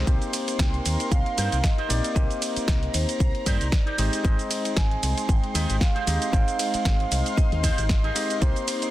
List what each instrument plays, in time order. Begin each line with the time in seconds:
Already playing: vibraphone C5
0.06 fingered electric bass C2, tine electric piano A#3 C4 D#4 G4 C5, analog synth pad D#4 A#4 C6, kick, closed hi-hat, shaker
0.22 closed hi-hat, shaker
0.33 muted clean electric guitar stroke, open hi-hat, ride, shaker
0.47 muted clean electric guitar stroke, closed hi-hat, shaker
0.58 fingered electric bass C2, vibraphone G5, kick, snare, closed hi-hat, shaker
0.74 closed hi-hat
0.86 fingered electric bass D#2, open hi-hat, ride, shaker
1.00 closed hi-hat, shaker
1.11 fingered electric bass C2, vibraphone F5, kick, closed hi-hat, shaker
1.26 closed hi-hat
1.37 fingered electric bass G2, clean electric guitar D#4 G4 A#4 C5, open hi-hat, ride, shaker
1.52 fingered electric bass C2, closed hi-hat, shaker
1.63 vibraphone D#5, kick, snare, closed hi-hat, shaker
1.78 clean electric guitar D#4 G4 A#4 C5, closed hi-hat
1.89 fingered electric bass A#1, tine electric piano A#3 C4 D#4 G4 D5, open hi-hat, ride, shaker
2.04 closed hi-hat, shaker
2.15 fingered electric bass C2, tine electric piano A#3 C4 D#4 G4 C5, vibraphone D#5, analog synth pad A#5, kick, closed hi-hat, shaker
2.31 closed hi-hat, shaker
2.41 muted clean electric guitar stroke, open hi-hat, ride, shaker
2.56 muted clean electric guitar stroke, muted fingered electric bass stroke, closed hi-hat, shaker
2.67 fingered electric bass C2, muted clean electric guitar stroke, kick, snare, closed hi-hat, shaker
2.83 closed hi-hat
2.93 fingered electric bass D#2, vibraphone C5, open hi-hat, ride, shaker
3.09 closed hi-hat, shaker
3.19 fingered electric bass C2, vibraphone C5, kick, closed hi-hat, shaker
3.35 closed hi-hat
3.45 fingered electric bass G2, clean electric guitar D#4 G4 A#4 C5, vibraphone D5, kick, open hi-hat, ride, shaker
3.61 fingered electric bass C2, closed hi-hat, shaker
3.72 kick, snare, closed hi-hat, shaker
3.86 clean electric guitar D#4 G4 A#4 D5, closed hi-hat
3.97 fingered electric bass G#1, tine electric piano G#3 C4 D#4 G4 D#5, analog synth pad G#3 C6, clean electric guitar D#4 G4 G#4 C5, vibraphone D#5, open hi-hat, ride, shaker
4.13 closed hi-hat, shaker
4.23 fingered electric bass G#1, tine electric piano G#3 C4 D#4 C5 D#5, kick, closed hi-hat, shaker
4.39 closed hi-hat, shaker
4.50 muted clean electric guitar stroke, open hi-hat, ride, shaker
4.64 muted clean electric guitar stroke, closed hi-hat, shaker
4.76 fingered electric bass G#1, vibraphone G#5, muted clean electric guitar stroke, kick, snare, closed hi-hat, shaker
4.91 closed hi-hat
5.03 fingered electric bass C2, open hi-hat, ride, shaker
5.17 closed hi-hat, shaker
5.28 fingered electric bass G#1, vibraphone G5, kick, closed hi-hat, shaker
5.44 closed hi-hat
5.54 fingered electric bass D#2, clean electric guitar D#4 G4 G#4 D#5, open hi-hat, ride, shaker
5.70 fingered electric bass G#1, closed hi-hat, shaker
5.80 vibraphone F5, kick, snare, closed hi-hat, shaker
5.95 clean electric guitar D#4 G4 G#4 C5, closed hi-hat
6.07 fingered electric bass D#2, tine electric piano G#3 C4 D#4 G4 D#5, analog synth pad F5, open hi-hat, ride, shaker
6.22 closed hi-hat, shaker
6.32 fingered electric bass G#1, tine electric piano G#3 C4 D#4 C5 G5, vibraphone F5, kick, closed hi-hat, shaker
6.48 closed hi-hat, shaker
6.58 muted clean electric guitar stroke, open hi-hat, ride, shaker
6.73 muted clean electric guitar stroke, muted fingered electric bass stroke, closed hi-hat, shaker
6.85 fingered electric bass G#1, kick, snare, closed hi-hat, shaker
7.00 closed hi-hat
7.11 fingered electric bass C2, vibraphone D#5, open hi-hat, ride, shaker
7.26 closed hi-hat, shaker
7.36 vibraphone D#5, kick, closed hi-hat, shaker
7.52 fingered electric bass D#2, closed hi-hat
7.62 clean electric guitar D#4 G4 G#4 C5, vibraphone D#5, kick, open hi-hat, ride, shaker
7.78 fingered electric bass G#1, closed hi-hat, shaker
7.89 kick, snare, closed hi-hat, shaker
8.03 clean electric guitar D#4 G4 G#4 A#4, closed hi-hat
8.14 tine electric piano G#3 C4 D#4 G4 D#5, vibraphone D#5, open hi-hat, ride, shaker
8.30 closed hi-hat, shaker
8.40 fingered electric bass C2, tine electric piano A#3 C4 D#4 G4 C5, analog synth pad A#4 G5, vibraphone C5, kick, closed hi-hat, shaker
8.56 closed hi-hat, shaker
8.67 muted clean electric guitar stroke, open hi-hat, ride, shaker
8.81 muted clean electric guitar stroke, closed hi-hat, shaker